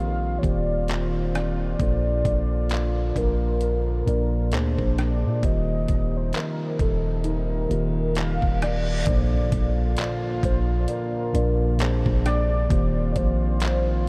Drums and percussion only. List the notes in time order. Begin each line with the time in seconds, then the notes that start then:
0.43 kick, closed hi-hat
0.88 clap, closed hi-hat
1.35 cross-stick, closed hi-hat
1.80 kick, closed hi-hat
2.25 kick, closed hi-hat
2.70 clap, closed hi-hat
3.16 kick, closed hi-hat
3.61 closed hi-hat
4.08 closed hi-hat
4.52 clap, closed hi-hat
4.79 kick
4.98 cross-stick, closed hi-hat
5.43 kick, closed hi-hat
5.88 kick, closed hi-hat
6.33 clap, closed hi-hat
6.79 kick, closed hi-hat
7.24 closed hi-hat
7.71 closed hi-hat
8.15 clap, closed hi-hat
8.42 kick
8.62 cross-stick, closed hi-hat
9.07 kick, closed hi-hat
9.52 kick, closed hi-hat
9.97 clap, closed hi-hat
10.43 kick, closed hi-hat
10.88 closed hi-hat
11.35 closed hi-hat
11.79 clap, closed hi-hat
12.06 kick
12.26 cross-stick, closed hi-hat
12.70 kick, closed hi-hat
13.16 kick, closed hi-hat
13.60 clap, closed hi-hat